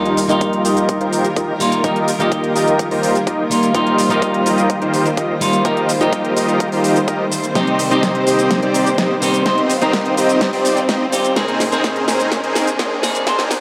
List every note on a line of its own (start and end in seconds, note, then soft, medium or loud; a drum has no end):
0.00 11.33 D#3 medium
0.00 0.26 G3 medium
0.00 11.33 G3 medium
0.00 0.26 A#3 medium
0.00 7.52 A#3 medium
0.00 0.20 D#4 medium
0.00 0.27 D#4 medium
0.00 0.20 F4 medium
0.00 0.27 F4 medium
0.00 7.51 F4 medium
0.00 0.20 G4 medium
0.00 0.20 A#4 medium
0.00 3.71 A#4 medium
0.00 0.20 D#5 loud
0.00 riser medium
0.05 closed hi-hat soft
0.17 open hi-hat loud
0.17 shaker medium
0.28 1.57 G3 medium
0.28 1.57 A#3 medium
0.28 0.62 D#4 medium
0.28 1.58 D#4 medium
0.28 0.62 F4 medium
0.28 1.58 F4 loud
0.28 0.62 G4 medium
0.28 0.62 A#4 medium
0.28 0.62 D#5 loud
0.28 closed hi-hat soft
0.28 shaker soft
0.41 kick loud
0.41 closed hi-hat medium
0.41 shaker soft
0.53 closed hi-hat soft
0.65 0.98 D#4 medium
0.65 0.98 F4 medium
0.65 0.98 G4 medium
0.65 0.98 A#4 medium
0.65 0.98 D#5 medium
0.65 open hi-hat loud
0.65 shaker medium
0.77 closed hi-hat soft
0.77 shaker soft
0.89 kick loud
0.89 closed hi-hat medium
0.89 shaker soft
1.01 1.27 D#4 medium
1.01 1.27 F4 medium
1.01 1.27 G4 medium
1.01 1.27 A#4 medium
1.01 1.27 C5 medium
1.01 closed hi-hat soft
1.13 open hi-hat loud
1.13 shaker medium
1.25 closed hi-hat medium
1.25 shaker soft
1.36 1.53 D#4 medium
1.36 1.53 F4 medium
1.36 1.53 G4 medium
1.36 1.53 A#4 medium
1.36 1.53 D#5 medium
1.36 kick loud
1.36 closed hi-hat medium
1.36 shaker soft
1.60 1.81 G3 medium
1.60 1.81 A#3 loud
1.60 1.81 D#4 medium
1.60 1.82 F4 loud
1.60 open hi-hat loud
1.60 shaker medium
1.72 closed hi-hat medium
1.72 shaker soft
1.83 1.98 G3 medium
1.83 1.98 A#3 medium
1.83 2.11 D#4 medium
1.83 1.98 D#4 medium
1.83 2.11 F4 medium
1.83 2.11 G4 medium
1.83 2.11 A#4 medium
1.83 1.98 A#4 medium
1.83 2.11 D#5 loud
1.83 kick loud
1.83 closed hi-hat medium
1.83 shaker soft
1.96 closed hi-hat soft
2.08 open hi-hat loud
2.08 shaker medium
2.19 3.47 G3 medium
2.19 3.48 A#3 medium
2.19 2.53 D#4 loud
2.19 3.48 D#4 medium
2.19 2.53 F4 medium
2.19 2.53 G4 medium
2.19 3.49 G4 medium
2.19 2.53 A#4 medium
2.19 2.53 D#5 loud
2.19 closed hi-hat soft
2.19 shaker soft
2.32 kick loud
2.32 closed hi-hat medium
2.32 shaker soft
2.44 closed hi-hat soft
2.55 2.88 D#4 medium
2.55 2.88 F4 medium
2.55 2.88 G4 medium
2.55 2.88 A#4 medium
2.55 2.88 D#5 medium
2.55 open hi-hat loud
2.55 shaker medium
2.68 closed hi-hat soft
2.68 shaker soft
2.79 kick loud
2.79 closed hi-hat medium
2.79 shaker soft
2.91 3.18 D#4 medium
2.91 3.18 F4 medium
2.91 3.18 G4 medium
2.91 3.18 A#4 medium
2.91 3.18 C5 medium
2.91 open hi-hat medium
3.03 open hi-hat loud
3.03 shaker medium
3.15 closed hi-hat medium
3.15 shaker soft
3.27 3.44 D#4 medium
3.27 3.44 F4 medium
3.27 3.44 G4 medium
3.27 3.44 A#4 medium
3.27 3.44 D#5 medium
3.27 kick loud
3.27 closed hi-hat medium
3.27 shaker soft
3.50 3.71 G3 medium
3.50 3.72 A#3 medium
3.50 3.72 D#4 medium
3.50 3.72 F4 medium
3.50 open hi-hat loud
3.50 shaker medium
3.63 closed hi-hat medium
3.63 shaker soft
3.74 4.07 G3 loud
3.74 4.07 A#3 medium
3.74 4.01 D#4 medium
3.74 4.08 D#4 medium
3.74 4.01 F4 medium
3.74 4.08 F4 loud
3.74 4.01 G4 medium
3.74 4.01 A#4 medium
3.74 13.60 C5 medium
3.74 4.01 D#5 loud
3.74 kick loud
3.74 closed hi-hat medium
3.74 shaker soft
3.87 closed hi-hat soft
3.98 open hi-hat loud
3.98 shaker medium
4.09 5.38 G3 loud
4.09 5.38 A#3 medium
4.09 4.43 D#4 medium
4.09 5.39 D#4 medium
4.09 4.43 F4 medium
4.09 5.39 F4 loud
4.09 4.43 G4 medium
4.09 4.43 A#4 medium
4.09 4.43 D#5 loud
4.09 closed hi-hat soft
4.09 shaker soft
4.22 kick loud
4.22 closed hi-hat medium
4.22 shaker soft
4.34 closed hi-hat soft
4.46 4.79 D#4 medium
4.46 4.79 F4 medium
4.46 4.79 G4 medium
4.46 4.79 A#4 medium
4.46 4.79 D#5 medium
4.46 open hi-hat loud
4.46 shaker medium
4.58 closed hi-hat soft
4.58 shaker soft
4.70 kick loud
4.70 closed hi-hat medium
4.70 shaker soft
4.82 5.08 D#4 medium
4.82 5.08 F4 medium
4.82 5.08 G4 medium
4.82 5.08 A#4 medium
4.82 5.08 C5 medium
4.82 closed hi-hat soft
4.94 open hi-hat loud
4.94 shaker medium
5.06 closed hi-hat soft
5.06 shaker soft
5.17 5.34 D#4 medium
5.17 5.34 F4 medium
5.17 5.34 G4 medium
5.17 5.34 A#4 medium
5.17 5.34 D#5 medium
5.17 kick loud
5.17 closed hi-hat medium
5.17 shaker soft
5.40 5.62 G3 medium
5.40 5.62 A#3 medium
5.40 5.62 D#4 medium
5.40 5.62 F4 medium
5.40 open hi-hat loud
5.40 shaker medium
5.53 closed hi-hat soft
5.53 shaker soft
5.64 5.79 G3 medium
5.64 5.79 A#3 medium
5.64 5.92 D#4 medium
5.64 5.79 D#4 medium
5.64 5.92 F4 medium
5.64 5.92 G4 medium
5.64 5.92 A#4 medium
5.64 5.79 A#4 loud
5.64 5.92 D#5 loud
5.64 kick loud
5.64 closed hi-hat medium
5.64 shaker soft
5.77 closed hi-hat soft
5.89 open hi-hat loud
5.89 shaker medium
5.99 7.28 G3 medium
5.99 7.29 A#3 medium
5.99 6.34 D#4 medium
5.99 7.29 D#4 medium
5.99 6.34 F4 medium
5.99 6.34 G4 medium
5.99 7.29 G4 medium
5.99 6.34 A#4 medium
5.99 6.34 D#5 loud
5.99 closed hi-hat soft
5.99 shaker soft
6.13 kick loud
6.13 closed hi-hat medium
6.13 shaker soft
6.25 closed hi-hat soft
6.36 6.69 D#4 medium
6.36 6.69 F4 medium
6.36 6.69 G4 medium
6.36 6.69 A#4 medium
6.36 6.69 D#5 medium
6.36 open hi-hat loud
6.36 shaker medium
6.48 closed hi-hat soft
6.48 shaker soft
6.60 kick loud
6.60 closed hi-hat medium
6.60 shaker soft
6.72 6.99 D#4 medium
6.72 6.99 F4 medium
6.72 6.99 G4 medium
6.72 6.99 A#4 medium
6.72 6.99 C5 medium
6.72 open hi-hat medium
6.84 open hi-hat loud
6.84 shaker medium
6.96 closed hi-hat soft
6.96 shaker soft
7.08 7.24 D#4 medium
7.08 7.24 F4 medium
7.08 7.24 G4 medium
7.08 7.25 A#4 medium
7.08 7.24 D#5 medium
7.08 kick loud
7.08 closed hi-hat medium
7.08 shaker soft
7.32 open hi-hat loud
7.32 shaker medium
7.44 closed hi-hat medium
7.44 shaker soft
7.55 7.88 C3 loud
7.55 7.88 G3 medium
7.55 7.88 C4 medium
7.55 13.60 C4 medium
7.55 7.82 C4 medium
7.55 7.82 D#4 medium
7.55 7.88 D#4 medium
7.55 7.82 G4 medium
7.55 9.44 G4 medium
7.55 7.89 G4 loud
7.55 7.82 C5 medium
7.55 7.82 D#5 loud
7.55 kick loud
7.55 snare soft
7.55 closed hi-hat medium
7.55 shaker soft
7.67 closed hi-hat soft
7.79 open hi-hat loud
7.79 shaker medium
7.90 9.19 C3 medium
7.90 9.19 G3 medium
7.90 8.24 C4 medium
7.90 9.19 C4 medium
7.90 8.24 D#4 medium
7.90 9.20 D#4 medium
7.90 8.24 G4 medium
7.90 9.20 G4 loud
7.90 8.24 C5 medium
7.90 8.24 D#5 loud
7.90 closed hi-hat soft
7.90 shaker soft
8.03 kick loud
8.03 snare soft
8.03 closed hi-hat medium
8.03 shaker soft
8.15 closed hi-hat soft
8.27 8.60 C4 medium
8.27 8.60 D#4 medium
8.27 8.60 G4 medium
8.27 8.60 C5 medium
8.27 8.60 D#5 medium
8.27 open hi-hat loud
8.27 shaker medium
8.39 closed hi-hat soft
8.39 shaker soft
8.51 kick loud
8.51 snare medium
8.51 closed hi-hat medium
8.51 shaker soft
8.62 8.89 C4 medium
8.62 8.89 D#4 medium
8.62 8.89 G4 medium
8.62 8.89 C5 medium
8.62 8.89 D5 medium
8.62 closed hi-hat soft
8.74 open hi-hat loud
8.74 shaker medium
8.86 closed hi-hat medium
8.86 shaker soft
8.98 9.15 C4 medium
8.98 9.15 D#4 medium
8.98 9.15 G4 medium
8.98 9.15 C5 medium
8.98 9.15 D#5 medium
8.98 kick loud
8.98 snare medium
8.98 closed hi-hat medium
8.98 shaker soft
9.21 9.43 C3 loud
9.21 9.43 G3 medium
9.21 9.43 C4 medium
9.21 9.43 D#4 medium
9.21 9.43 G4 medium
9.21 open hi-hat loud
9.21 shaker medium
9.34 closed hi-hat medium
9.34 shaker soft
9.45 9.59 C3 medium
9.45 9.60 G3 medium
9.45 9.72 C4 medium
9.45 9.60 C4 medium
9.45 9.72 D#4 medium
9.45 9.60 D#4 medium
9.45 11.34 F4 medium
9.45 9.72 G4 medium
9.45 9.72 C5 medium
9.45 9.60 C5 medium
9.45 9.72 D#5 loud
9.45 kick loud
9.45 snare medium
9.45 closed hi-hat medium
9.45 shaker soft
9.58 closed hi-hat soft
9.70 open hi-hat loud
9.70 shaker medium
9.80 11.09 C3 medium
9.80 11.10 G3 medium
9.80 10.14 C4 medium
9.80 11.10 C4 medium
9.80 10.14 D#4 medium
9.80 11.10 D#4 medium
9.80 10.14 G4 medium
9.80 11.10 A#4 medium
9.80 10.14 C5 medium
9.80 10.14 D#5 loud
9.80 closed hi-hat medium
9.80 shaker soft
9.93 kick loud
9.93 snare medium
9.93 closed hi-hat medium
9.93 shaker soft
10.05 closed hi-hat soft
10.17 10.50 C4 medium
10.17 10.50 D#4 medium
10.17 10.50 G4 medium
10.17 10.50 C5 medium
10.17 10.50 D#5 medium
10.17 open hi-hat loud
10.17 shaker medium
10.29 closed hi-hat medium
10.29 shaker soft
10.41 kick loud
10.41 snare medium
10.41 closed hi-hat medium
10.41 shaker soft
10.53 10.80 C4 medium
10.53 10.80 D#4 medium
10.53 10.80 G4 medium
10.53 10.80 C5 medium
10.53 10.80 D5 medium
10.53 open hi-hat medium
10.65 open hi-hat loud
10.65 shaker medium
10.77 closed hi-hat medium
10.77 shaker soft
10.89 11.05 C4 medium
10.89 11.05 D#4 medium
10.89 11.05 G4 medium
10.89 11.05 C5 medium
10.89 11.05 D#5 medium
10.89 kick loud
10.89 snare medium
10.89 closed hi-hat medium
10.89 shaker soft
11.12 11.33 G3 medium
11.12 11.33 C4 medium
11.12 11.34 D#4 medium
11.12 11.34 G4 medium
11.12 open hi-hat loud
11.12 shaker medium
11.24 closed hi-hat medium
11.24 shaker soft
11.36 13.60 C2 medium
11.36 11.69 C3 loud
11.36 13.60 D#3 medium
11.36 11.69 A#3 medium
11.36 13.60 A#3 medium
11.36 11.69 C4 medium
11.36 11.63 C4 medium
11.36 11.63 D#4 medium
11.36 11.69 D#4 medium
11.36 13.60 G#4 medium
11.36 11.63 G#4 medium
11.36 11.70 G#4 loud
11.36 11.63 A#4 medium
11.36 11.63 C5 loud
11.36 kick loud
11.36 snare medium
11.36 closed hi-hat medium
11.36 shaker soft
11.48 closed hi-hat soft
11.60 snare medium
11.60 open hi-hat loud
11.60 shaker medium
11.71 13.00 C3 loud
11.71 13.00 A#3 medium
11.71 12.05 C4 loud
11.71 13.00 C4 medium
11.71 12.05 D#4 medium
11.71 13.01 D#4 medium
11.71 12.05 G#4 medium
11.71 13.01 G#4 loud
11.71 12.05 A#4 medium
11.71 12.05 C5 loud
11.71 closed hi-hat medium
11.71 shaker soft
11.84 kick loud
11.84 snare medium
11.84 closed hi-hat medium
11.84 shaker soft
11.96 closed hi-hat soft
12.08 12.41 C4 medium
12.08 12.41 D#4 medium
12.08 12.41 G#4 medium
12.08 12.41 A#4 medium
12.08 12.41 C5 medium
12.08 snare medium
12.08 open hi-hat loud
12.08 shaker medium
12.20 closed hi-hat medium
12.20 shaker soft
12.32 kick loud
12.32 snare medium
12.32 closed hi-hat medium
12.32 shaker soft
12.43 12.70 C4 medium
12.43 12.70 D#4 medium
12.43 12.70 G#4 medium
12.43 12.70 A#4 medium
12.43 12.70 C5 medium
12.43 closed hi-hat soft
12.55 snare medium
12.55 open hi-hat loud
12.55 shaker medium
12.67 closed hi-hat medium
12.67 shaker soft
12.79 12.96 C4 medium
12.79 12.96 D#4 medium
12.79 12.96 G#4 medium
12.79 12.96 A#4 medium
12.79 12.96 C5 medium
12.79 kick loud
12.79 snare medium
12.79 closed hi-hat medium
12.79 shaker soft
13.02 13.24 C3 medium
13.02 13.24 A#3 medium
13.02 13.24 C4 medium
13.02 13.24 D#4 medium
13.02 13.24 G#4 loud
13.02 snare medium
13.02 open hi-hat loud
13.02 shaker medium
13.15 closed hi-hat medium
13.15 shaker soft
13.26 13.41 C3 medium
13.26 13.41 A#3 medium
13.26 13.41 C4 medium
13.26 13.54 C4 loud
13.26 13.54 D#4 medium
13.26 13.41 D#4 medium
13.26 13.54 G#4 medium
13.26 13.54 A#4 medium
13.26 13.54 C5 loud
13.26 13.41 C5 loud
13.26 kick loud
13.26 snare medium
13.26 closed hi-hat medium
13.26 shaker soft
13.39 snare medium
13.39 closed hi-hat soft
13.51 snare loud
13.51 open hi-hat loud
13.51 shaker medium